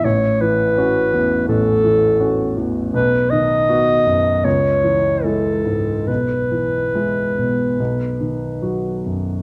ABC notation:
X:1
M:4/4
L:1/8
Q:1/4=77
K:Bmix
V:1 name="Clarinet"
c B3 A3 z | B d3 c2 A2 | B6- B z |]
V:2 name="Grand piano" clef=bass
A,,, E, [CF] E,, A,,, E, [CF] E,, | B,,, D, [B,F] F,, C,, E, [G,E] G,, | B,,, E, [G,E] B,, B,,, D, [F,F] F,, |]